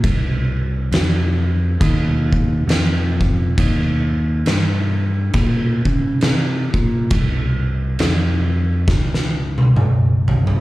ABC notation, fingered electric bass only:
X:1
M:4/4
L:1/8
Q:"Swing" 1/4=68
K:Cphr
V:1 name="Fingered electric bass" clef=bass
C,,2 F,,2 E,,2 F,,2 | E,,2 G,,2 B,, D, C, B,, | C,,2 F,,2 D,,2 D,,2 |]